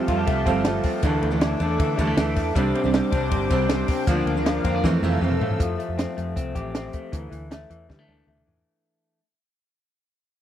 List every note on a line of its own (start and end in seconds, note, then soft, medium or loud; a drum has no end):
0.00 1.03 F3 medium
0.00 0.26 A3 medium
0.00 0.44 C4 medium
0.00 1.02 G4 medium
0.00 1.01 F5 medium
0.00 1.01 A5 medium
0.08 0.24 F2 loud
0.08 0.46 G3 medium
0.08 0.46 C4 medium
0.08 0.18 F4 medium
0.08 0.46 F4 medium
0.08 0.47 A4 medium
0.08 kick loud
0.08 ride medium
0.18 1.07 G4 medium
0.27 0.43 C2 medium
0.27 0.64 A3 medium
0.27 kick loud
0.27 ride medium
0.46 0.79 G1 loud
0.46 0.65 F3 medium
0.46 0.63 G3 medium
0.46 0.83 C4 medium
0.46 0.64 C4 loud
0.46 0.65 F4 loud
0.46 0.66 A4 loud
0.46 kick loud
0.46 ride medium
0.64 1.03 G3 medium
0.64 1.07 A3 medium
0.64 1.03 C4 medium
0.64 1.04 F4 medium
0.64 1.04 A4 medium
0.64 snare loud
0.64 ride medium
0.84 1.03 C4 medium
0.84 kick medium
0.84 open hi-hat medium
0.84 ride medium
1.03 1.19 D2 loud
1.03 1.31 D3 medium
1.03 1.40 E3 medium
1.03 1.31 E3 medium
1.03 1.31 A3 medium
1.03 1.60 D4 medium
1.03 1.30 D4 loud
1.03 2.54 A4 medium
1.03 1.29 A4 medium
1.03 2.54 E5 medium
1.03 4.80 D6 medium
1.03 kick loud
1.03 hi-hat pedal medium
1.03 ride medium
1.22 1.55 D2 medium
1.22 1.97 A3 medium
1.22 ride medium
1.31 1.61 D3 medium
1.31 1.58 E3 medium
1.31 1.59 A3 medium
1.31 1.60 D4 medium
1.31 1.60 A4 medium
1.41 1.78 E3 medium
1.41 snare loud
1.41 ride medium
1.59 1.76 E2 loud
1.59 1.98 E3 medium
1.59 1.98 A3 medium
1.59 2.55 D4 medium
1.59 1.99 D4 medium
1.59 1.99 A4 medium
1.59 ride medium
1.79 1.96 D3 loud
1.79 2.16 E3 medium
1.79 kick loud
1.79 ride medium
1.97 2.15 D2 medium
1.97 2.17 D3 medium
1.97 2.16 E3 medium
1.97 2.07 G3 medium
1.97 2.17 A3 medium
1.97 2.18 D4 loud
1.97 2.18 A4 loud
1.97 kick loud
1.97 ride medium
2.07 2.35 A3 medium
2.17 2.33 D2 medium
2.17 2.55 E3 medium
2.17 2.56 A3 medium
2.17 2.57 D4 medium
2.17 2.57 A4 medium
2.17 snare loud
2.17 ride medium
2.36 2.53 E2 medium
2.36 2.59 A3 medium
2.36 kick medium
2.36 open hi-hat medium
2.36 ride medium
2.55 2.72 C2 loud
2.55 2.84 C3 medium
2.55 2.92 G3 medium
2.55 2.84 G3 medium
2.55 2.84 C4 medium
2.55 3.11 D4 medium
2.55 2.83 D4 loud
2.55 4.06 C5 medium
2.55 4.06 G5 medium
2.55 kick loud
2.55 hi-hat pedal medium
2.55 ride medium
2.75 3.49 C4 medium
2.75 ride medium
2.84 3.00 C2 loud
2.84 3.12 C3 medium
2.84 3.13 G3 medium
2.84 3.13 C4 medium
2.84 3.12 D4 medium
2.93 3.30 G3 medium
2.93 snare loud
2.93 ride medium
3.12 3.29 C2 loud
3.12 3.50 C3 medium
3.12 3.50 G3 medium
3.12 3.51 C4 medium
3.12 4.07 D4 medium
3.12 3.51 D4 medium
3.12 kick medium
3.12 ride medium
3.31 3.48 G1 medium
3.31 3.68 G3 medium
3.31 kick loud
3.31 ride medium
3.50 3.83 C2 medium
3.50 3.68 C3 medium
3.50 3.70 G3 medium
3.50 3.87 C4 medium
3.50 3.70 C4 loud
3.50 3.70 D4 loud
3.50 kick loud
3.50 ride medium
3.69 4.07 C3 medium
3.69 4.07 G3 medium
3.69 4.08 G3 medium
3.69 4.08 C4 medium
3.69 4.08 D4 medium
3.69 snare loud
3.69 ride medium
3.88 4.11 C4 medium
3.88 kick loud
3.88 open hi-hat medium
3.88 ride medium
4.07 4.24 D2 loud
4.07 4.36 D3 medium
4.07 4.45 F3 medium
4.07 4.37 F3 medium
4.07 4.37 A#3 loud
4.07 4.64 D4 medium
4.07 4.36 D4 loud
4.07 4.83 A#4 medium
4.07 4.83 F5 medium
4.07 kick loud
4.07 hi-hat pedal medium
4.07 ride medium
4.26 4.59 D2 medium
4.26 4.88 A#3 medium
4.26 ride medium
4.37 4.63 D3 medium
4.37 4.64 F3 medium
4.37 4.65 A#3 medium
4.37 4.65 D4 medium
4.45 4.83 F3 medium
4.45 snare loud
4.45 ride medium
4.64 4.81 F2 medium
4.64 4.84 D3 medium
4.64 4.84 F3 medium
4.64 4.84 A#3 medium
4.64 4.75 C4 medium
4.64 4.85 D4 medium
4.64 kick medium
4.64 ride medium
4.75 4.88 D4 medium
4.84 5.02 F2 medium
4.84 5.02 C3 medium
4.84 5.20 E3 medium
4.84 5.02 E3 medium
4.84 5.00 F3 loud
4.84 5.03 A3 medium
4.84 5.03 C4 medium
4.84 5.59 A4 medium
4.84 5.59 F5 medium
4.84 5.59 E6 medium
4.84 kick loud
4.84 snare medium
5.02 5.19 F2 medium
5.02 5.22 F2 medium
5.02 5.20 C3 medium
5.02 5.21 E3 medium
5.02 5.41 A3 medium
5.02 5.22 A3 loud
5.02 5.23 C4 medium
5.02 high tom medium
5.21 5.38 F2 loud
5.21 5.60 C3 medium
5.21 5.59 E3 medium
5.21 5.60 E3 medium
5.21 6.11 A3 medium
5.21 5.61 C4 medium
5.21 mid tom medium
5.32 mid tom medium
5.40 5.57 G2 medium
5.40 5.78 A3 medium
5.40 floor tom loud
5.51 floor tom loud
5.60 5.76 F2 loud
5.60 7.12 F3 medium
5.60 kick loud
5.60 closed hi-hat medium
5.78 6.16 A3 medium
5.78 closed hi-hat medium
5.89 6.05 F2 medium
5.98 6.35 C4 medium
5.98 snare loud
5.98 closed hi-hat medium
6.17 6.34 F2 medium
6.17 6.93 A3 medium
6.17 closed hi-hat medium
6.36 6.53 C2 medium
6.36 6.73 C4 medium
6.36 kick medium
6.36 closed hi-hat medium
6.55 6.88 A1 medium
6.55 7.17 G4 medium
6.55 kick medium
6.55 closed hi-hat medium
6.74 7.17 C4 medium
6.74 snare loud
6.74 closed hi-hat medium
6.93 7.51 A3 medium
6.93 kick medium
6.93 closed hi-hat medium
7.12 7.29 D2 medium
7.12 7.31 E3 medium
7.12 kick loud
7.12 closed hi-hat medium
7.31 7.64 D2 medium
7.31 7.70 E3 medium
7.31 closed hi-hat medium
7.51 7.89 A3 medium
7.51 snare loud
7.51 closed hi-hat medium
7.70 7.87 E2 medium
7.70 8.46 E3 medium
7.70 closed hi-hat medium
7.89 8.06 D3 medium
7.89 7.99 G3 medium
7.89 kick medium
7.89 snare soft
7.99 8.26 A3 soft
8.08 8.24 D2 medium
8.08 9.20 D4 medium
8.08 high tom medium
8.27 8.44 D2 medium
8.27 9.20 A3 medium
8.27 mid tom medium
8.37 mid tom medium
8.47 9.20 E3 soft
8.47 floor tom medium
8.57 floor tom medium